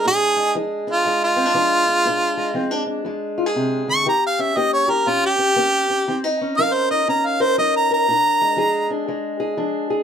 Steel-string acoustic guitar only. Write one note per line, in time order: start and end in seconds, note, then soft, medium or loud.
0.00 0.36 G#3 medium
0.05 0.51 A#2 medium
0.05 0.87 D4 medium
0.36 1.06 G#3 medium
0.55 1.01 F3 medium
0.55 2.04 G#4 medium
0.87 1.36 D4 medium
1.05 1.51 F2 medium
1.05 2.36 G#3 medium
1.36 1.46 C4 medium
1.46 1.54 D4 soft
1.54 2.01 F3 medium
1.54 1.87 D4 medium
1.88 2.04 D4 soft
2.06 2.52 A#2 medium
2.06 2.54 D4 medium
2.37 3.05 G#3 medium
2.54 3.01 F3 medium
2.54 2.71 C4 medium
2.71 2.85 D4 medium
2.86 4.03 D4 medium
3.05 3.52 F2 medium
3.05 4.06 G#3 medium
3.38 3.46 F4 medium
3.46 4.06 G#4 medium
3.56 3.87 C3 medium
3.88 4.06 D3 soft
4.06 4.52 D#3 medium
4.06 4.56 G4 medium
4.39 5.07 C#4 medium
4.56 5.03 A#3 medium
4.56 4.87 G4 medium
4.88 6.04 G4 medium
5.07 5.53 A#2 medium
5.07 5.37 C#4 medium
5.39 5.56 C#4 medium
5.56 6.03 A#3 medium
5.56 5.88 C#4 medium
5.90 6.05 C#4 medium
6.08 6.54 D#3 medium
6.08 6.24 C4 medium
6.24 6.89 D#4 soft
6.41 7.07 C#4 medium
6.58 7.04 F#3 medium
6.58 7.40 A#4 medium
6.91 7.58 D#4 soft
7.07 7.53 A#2 medium
7.07 8.05 C#4 medium
7.40 7.90 A#4 medium
7.58 8.04 F#3 medium
7.58 8.06 D#4 medium
7.91 8.44 A#4 medium
8.08 8.54 A#2 medium
8.08 8.90 D4 medium
8.41 9.08 G#3 medium
8.57 9.03 F3 medium
8.57 9.39 G#4 medium
8.90 9.56 D4 soft
9.08 9.54 F2 medium
9.08 10.03 G#3 medium
9.40 9.89 G#4 medium
9.57 10.03 F3 medium
9.57 10.03 D4 medium
9.90 10.03 G#4 medium